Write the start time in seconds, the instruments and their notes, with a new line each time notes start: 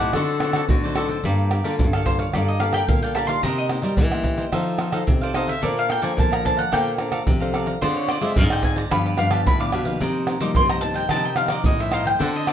Already playing: nylon-string guitar A2 G3 C4 D#4, clarinet G4, mandolin F#5
0.00 nylon-string guitar A2, cavaquinho C5 D#5 A5
0.13 nylon-string guitar D3 F#3 C4 D#4, cavaquinho F#4 A4 C5 D5, clarinet A4, pandeiro, tamborim, shaker, surdo
0.28 pandeiro, shaker
0.40 nylon-string guitar F#3 C4 D#4, cavaquinho F#4 A4 C5 D5, pandeiro, tamborim
0.53 cavaquinho F#4 A4 C5 D5, pandeiro, tamborim, shaker
0.69 nylon-string guitar A2 D3, clarinet F#4, pandeiro, shaker, surdo
0.84 nylon-string guitar F#3 C4 D#4, cavaquinho A4 C5 D5, pandeiro, shaker
0.95 cavaquinho F#4 A4 C5 D5, clarinet A4, pandeiro, tamborim
1.09 cavaquinho A4 C5 D5, pandeiro, shaker
1.24 nylon-string guitar G2 G3 A#3 F4 A4, cavaquinho G4 A#4 D5 F5, pandeiro, shaker, surdo
1.38 pandeiro, shaker
1.51 cavaquinho G4 A#4 D5 F5, pandeiro, tamborim, shaker
1.64 nylon-string guitar D3 A#3 F4 A4, cavaquinho G4 A#4 D5 F5, pandeiro, shaker
1.79 nylon-string guitar G2 D3, pandeiro, shaker, surdo
1.93 mandolin A4, cavaquinho A#4 D5 F5, pandeiro, tamborim, shaker
2.06 nylon-string guitar A#3 F4 A4, mandolin C5, pandeiro, shaker, surdo
2.19 cavaquinho A#4 D5 F5, mandolin C#5, pandeiro, shaker
2.33 nylon-string guitar G2 G3 A#3 F4 A4, cavaquinho G4 A#4 D5 F5, mandolin D5, pandeiro, tamborim, shaker, surdo
2.48 mandolin D#5, pandeiro, shaker
2.60 nylon-string guitar A#3 F4 A4, cavaquinho G4 A#4 D5 F5, mandolin F5, pandeiro, tamborim, shaker
2.73 cavaquinho G4 A#4 D5 F5, mandolin G5, pandeiro, tamborim, shaker
2.88 nylon-string guitar A#2 D3, mandolin F5, pandeiro, shaker, surdo
3.02 nylon-string guitar A#3 F4 A4, cavaquinho A#4 D5 F5, mandolin G5, pandeiro, shaker
3.15 cavaquinho G4 A#4 D5 F5, mandolin A5, pandeiro, tamborim
3.27 nylon-string guitar A#3 D#4 G4, cavaquinho A#4 D5 F5, mandolin C6, pandeiro, shaker
3.43 nylon-string guitar C3, cavaquinho D#4 A#4 C5 D#5, mandolin A#5, pandeiro, shaker, surdo
3.58 mandolin D#5, pandeiro, shaker
3.69 nylon-string guitar A#3 D#4 G4, cavaquinho D#4 A#4 C5 D#5, pandeiro, tamborim
3.82 nylon-string guitar G3, cavaquinho D#4 A#4 C5 D#5, pandeiro, shaker
3.97 nylon-string guitar E3 G3 A#3 D#4 G4, pandeiro, shaker, surdo
4.12 nylon-string guitar A#3 D#4 G4, cavaquinho A#4 C5 D#5, pandeiro, tamborim, shaker
4.24 pandeiro, shaker, surdo
4.37 cavaquinho A#4 C5 D#5, pandeiro, shaker
4.52 nylon-string guitar F3 D#4 A4 C5, cavaquinho D#4 A4 C5 F5, pandeiro, tamborim, shaker, surdo
4.67 pandeiro, shaker
4.79 cavaquinho D#4 A4 C5 F5, pandeiro, tamborim
4.92 cavaquinho D#4 A4 C5 F5, nylon-string guitar D#4 A4 C5, pandeiro, tamborim, shaker
5.07 nylon-string guitar C3, pandeiro, shaker, surdo
5.21 cavaquinho A4 C5 F5, mandolin D5, pandeiro, shaker
5.34 cavaquinho D#4 A4 C5 F5, nylon-string guitar D#4 A4 C5, mandolin D#5, pandeiro, tamborim, shaker
5.48 cavaquinho A4 C5 F5, mandolin E5, pandeiro, shaker
5.62 nylon-string guitar A#2 A#3 D4 A4 C5, cavaquinho A4 D5 F5 A#5, mandolin D5, pandeiro, shaker, surdo
5.77 mandolin F5, pandeiro, shaker
5.88 cavaquinho A4 D5 F5 A#5, mandolin G5, pandeiro, tamborim, shaker
6.02 nylon-string guitar F3 D4 A4 C5, cavaquinho A4 D5 F5 A#5, mandolin G#5, pandeiro, shaker
6.17 nylon-string guitar A#2 F3, mandolin A5, pandeiro, shaker, surdo
6.31 cavaquinho D5 F5 A#5, mandolin A#5, pandeiro, tamborim, shaker
6.45 nylon-string guitar D4 A4 C5, mandolin A5, pandeiro, surdo
6.55 cavaquinho D5 F5 A#5, mandolin F#5, pandeiro, shaker
6.72 nylon-string guitar A#2 A#3 D4 A4 C5, cavaquinho A4 D5 F5 A#5, mandolin G5, pandeiro, tamborim, shaker, surdo
6.87 pandeiro, shaker
6.98 nylon-string guitar D4 A4 C5, cavaquinho A4 D5 F5 A#5, pandeiro, tamborim, shaker
7.12 cavaquinho A4 D5 F5 A#5, pandeiro, tamborim, shaker
7.27 nylon-string guitar C3 F3, pandeiro, shaker, surdo
7.40 nylon-string guitar D4 A4 C5, cavaquinho D5 F5 A#5, pandeiro, shaker
7.54 cavaquinho A4 D5 F5 A#5, pandeiro, tamborim, shaker
7.66 cavaquinho D5 F5 A#5, pandeiro, shaker
7.81 nylon-string guitar D3 G#3 C4 F4, cavaquinho F4 G#4 C5 D5, mandolin C5, pandeiro, shaker, surdo
7.96 mandolin C#5, pandeiro, shaker
8.08 cavaquinho F4 G#4 C5 D5, mandolin D5, pandeiro, tamborim, shaker
8.21 nylon-string guitar G#3 C4 F4, cavaquinho F4 G#4 C5 D5, mandolin E5, pandeiro, shaker
8.36 nylon-string guitar G#2 D3, mandolin F5, pandeiro, shaker, surdo
8.50 cavaquinho G#4 C5 D5, mandolin G5, pandeiro, tamborim, shaker
8.63 nylon-string guitar G#3 C4 F4, mandolin G#5, pandeiro, shaker, surdo
8.76 cavaquinho G#4 C5 D5, mandolin A#5, pandeiro, shaker
8.90 nylon-string guitar G2 F3 B3 D4, cavaquinho D4 G4 B4 F5, mandolin B5, pandeiro, tamborim, shaker, surdo
9.06 mandolin D5, pandeiro, shaker
9.17 nylon-string guitar G2 F3 B3 D4, cavaquinho D4 G4 B4 F5, mandolin F5, pandeiro, tamborim, shaker
9.30 cavaquinho D4 G4 B4 F5, mandolin A5, pandeiro, tamborim, shaker
9.46 nylon-string guitar A2 D3, mandolin B5, pandeiro, shaker, surdo
9.60 nylon-string guitar F3 B3 D4, cavaquinho G4 B4 F5, mandolin D6, pandeiro, shaker
9.72 nylon-string guitar B2, cavaquinho D4 G4 B4 F5, pandeiro, tamborim
9.85 nylon-string guitar F3 A#3 D#4, cavaquinho G4 B4 F5, pandeiro, shaker
10.01 nylon-string guitar C3, cavaquinho D#4 A#4 C5 D#5, pandeiro, shaker, surdo
10.15 pandeiro, shaker
10.27 cavaquinho D#4 A#4 C5 D#5, pandeiro, tamborim, shaker
10.40 nylon-string guitar F3 G3 A#3 D#4, cavaquinho D#4 A#4 C5 D#5, mandolin D6, pandeiro, shaker
10.55 nylon-string guitar G2 C3, mandolin C6, pandeiro, shaker, surdo
10.69 cavaquinho A#4 C5 D#5, mandolin A#5, pandeiro, tamborim, shaker
10.81 nylon-string guitar F3 A#3 D#4, mandolin A5, pandeiro, shaker
10.94 cavaquinho A#4 C5 D#5, mandolin G5, pandeiro, shaker
11.09 nylon-string guitar C3 F3 A#3 D#4, cavaquinho D#4 A#4 C5 D#5, mandolin A5, pandeiro, tamborim, shaker, surdo
11.23 mandolin G5, pandeiro, shaker
11.36 nylon-string guitar F3 A#3 D#4, cavaquinho D#4 A#4 C5 D#5, mandolin F5, pandeiro, tamborim
11.48 cavaquinho D#4 A#4 C5 D#5, mandolin D5, pandeiro, tamborim, shaker
11.64 nylon-string guitar G2 A2, mandolin D#5, pandeiro, shaker, surdo
11.79 nylon-string guitar F3 D#4, cavaquinho A#4 C5 D#5, mandolin E5, pandeiro, shaker
11.91 cavaquinho D#4 A#4 C5 D#5, mandolin F5, pandeiro, tamborim
12.04 cavaquinho A#4 C5 D#5, mandolin G5, pandeiro, shaker
12.19 nylon-string guitar D3 C4 F#4 A4, cavaquinho D4 A4 C5 F#5, mandolin F#5, pandeiro, shaker, surdo
12.34 mandolin D#5, pandeiro, shaker
12.46 cavaquinho D4 A4 C5 F#5, mandolin D5, pandeiro, tamborim, shaker